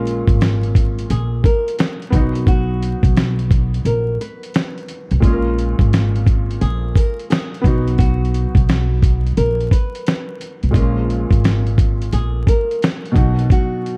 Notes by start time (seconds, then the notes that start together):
Already playing: A#1 A#2 G#3 C#4 F4 A#4
0.07 closed hi-hat
0.27 G#1, kick, closed hi-hat
0.41 snare, closed hi-hat
0.63 closed hi-hat
0.75 kick, closed hi-hat
0.99 closed hi-hat
1.10 A#1 G#4, closed hi-hat
1.44 A#4, kick, closed hi-hat
1.68 closed hi-hat
1.79 G#4, snare, closed hi-hat
2.02 closed hi-hat
2.10 B1 F#3 B3 D#4, kick, closed hi-hat
2.16 F#4
2.35 closed hi-hat
2.47 F#4, kick, closed hi-hat
2.83 closed hi-hat
3.03 B1, kick, closed hi-hat
3.17 snare, closed hi-hat
3.39 closed hi-hat
3.51 kick, closed hi-hat
3.74 closed hi-hat
3.85 A#1 A#4, closed hi-hat
4.21 B4, closed hi-hat
4.43 closed hi-hat
4.54 snare, closed hi-hat
4.78 closed hi-hat
4.89 closed hi-hat
5.11 B1, closed hi-hat
5.20 A#1 A#2 G#3 C#4 F4, kick, closed hi-hat
5.26 G#4
5.33 A#4
5.58 closed hi-hat
5.79 G#1, kick, closed hi-hat
5.93 snare, closed hi-hat
6.16 closed hi-hat
6.27 kick, closed hi-hat
6.51 closed hi-hat
6.61 A#1 G#4, closed hi-hat
6.96 A#4, kick, closed hi-hat
7.19 closed hi-hat
7.30 G#4, snare, closed hi-hat
7.54 closed hi-hat
7.61 B1 F#3 B3, kick
7.65 D#4 F#4, closed hi-hat
7.88 closed hi-hat
7.98 F#4, kick, closed hi-hat
8.25 closed hi-hat
8.34 closed hi-hat
8.55 B1, kick, closed hi-hat
8.69 snare, closed hi-hat
9.03 kick, closed hi-hat
9.26 closed hi-hat
9.37 A#1 A#4, closed hi-hat
9.60 closed hi-hat
9.71 B4, kick, closed hi-hat
9.95 closed hi-hat
10.07 snare, closed hi-hat
10.41 closed hi-hat
10.63 B1, closed hi-hat
10.71 A#1 A#2 G#3 C#4 F4, kick
10.76 A#4, closed hi-hat
11.10 closed hi-hat
11.31 G#1, kick, closed hi-hat
11.44 snare, closed hi-hat
11.67 closed hi-hat
11.78 kick, closed hi-hat
12.02 closed hi-hat
12.13 A#1 G#4, closed hi-hat
12.47 A#4, kick, closed hi-hat
12.71 closed hi-hat
12.82 G#4, snare, closed hi-hat
13.05 closed hi-hat
13.12 B2 F#3, kick
13.16 B1 D#4 F#4, closed hi-hat
13.39 closed hi-hat
13.50 F#4, kick, closed hi-hat
13.86 closed hi-hat